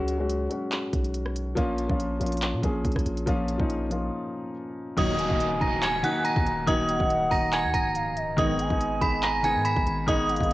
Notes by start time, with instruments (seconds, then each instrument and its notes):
Already playing: 808-style bass C#2, grand piano F#3 G#3 C#4 F#4
0.08 closed hi-hat
0.18 grand piano F#3 G#3 C#4 F#4
0.29 closed hi-hat
0.49 grand piano F#3 G#3 C#4 F#4, closed hi-hat
0.72 clap, closed hi-hat
0.93 808-style bass B1, kick, closed hi-hat
1.04 closed hi-hat
1.14 closed hi-hat
1.26 cross-stick
1.36 closed hi-hat
1.55 808-style bass A#1, grand piano F3 A#3 C#4 F4, kick, closed hi-hat
1.78 closed hi-hat
1.88 808-style bass A#1, grand piano F3 A#3 C#4 F4, kick
2.00 closed hi-hat
2.20 808-style bass A#1, grand piano F3 A#3 C#4 F4, closed hi-hat
2.26 closed hi-hat
2.32 closed hi-hat
2.37 closed hi-hat
2.42 clap, closed hi-hat
2.53 808-style bass A#2
2.62 808-style bass A#1, grand piano F3 A#3 C#4 G#4, kick, closed hi-hat
2.85 808-style bass A#1, kick, closed hi-hat
2.92 closed hi-hat
2.96 808-style bass A#1, kick, cross-stick, closed hi-hat
3.06 808-style bass A#1, closed hi-hat
3.17 closed hi-hat
3.26 808-style bass A#1, grand piano F3 A#3 C#4 F4, kick, closed hi-hat
3.48 closed hi-hat
3.58 808-style bass A#1, grand piano F3 A#3 C#4 D#4, kick
3.70 closed hi-hat
3.90 grand piano F3 A#3 C#4 F4, closed hi-hat
4.96 808-style bass D#1, analog polysynth D#2 A#2 F#3, grand piano D#3 F#3 A#3 D#4, synth bell D#5 D#6, kick, closed hi-hat, crash, downlifter
5.19 soft synth lead G#5, closed hi-hat
5.28 808-style bass D#1, grand piano D#3 F#3 A#3 D#4, kick
5.40 closed hi-hat
5.60 808-style bass D#1, grand piano D#3 F#3 A#3 D#4, synth bell A#5 A#6, kick, closed hi-hat
5.82 synth bell G#5 G#6, clap, closed hi-hat
6.03 grand piano D#3 F#3 A#3 D#4, synth bell F#5 F#6, closed hi-hat
6.24 synth bell A#5 A#6, closed hi-hat
6.36 808-style bass D#2, kick
6.46 808-style bass D#1, closed hi-hat
6.66 808-style bass D#1, grand piano D#3 F#3 A#3 D#4, synth bell D#5 D#6, kick, closed hi-hat
6.89 soft synth lead F#5, closed hi-hat
6.99 808-style bass D#1, grand piano D#3 F#3 A#3 D#4, kick
7.10 closed hi-hat
7.30 808-style bass D#1, grand piano D#3 F#3 A#3 D#4, synth bell A#5 A#6, kick, open hi-hat
7.53 synth bell G#5 G#6, clap, closed hi-hat
7.64 808-style bass D#2
7.74 808-style bass C#1, synth bell A#5 A#6, kick, closed hi-hat
7.95 soft synth lead F5, closed hi-hat
8.17 soft synth lead D#5, closed hi-hat
8.37 808-style bass G#1, analog polysynth B1 G#2 D#3, grand piano D#3 G#3 B3 D#4, synth bell D#5 D#6, kick, closed hi-hat
8.59 soft synth lead G#5, closed hi-hat
8.69 808-style bass G#1, grand piano D#3 G#3 B3 D#4, kick
8.81 closed hi-hat
9.00 808-style bass G#1, grand piano D#3 G#3 B3 D#4, synth bell B5 B6, kick, closed hi-hat
9.23 synth bell A#5 A#6, clap, closed hi-hat
9.43 grand piano D#3 G#3 B3 D#4, synth bell G#5 G#6, closed hi-hat
9.55 808-style bass G#2
9.65 synth bell B5 B6, closed hi-hat
9.77 808-style bass G#1, kick
9.87 808-style bass G#1, closed hi-hat
10.06 808-style bass G#1, grand piano D#3 G#3 B3 D#4, synth bell D#5 D#6, kick, closed hi-hat
10.29 soft synth lead F5, closed hi-hat
10.36 grand piano D#3 G#3, closed hi-hat
10.40 808-style bass G#1, grand piano B3 D#4, kick, closed hi-hat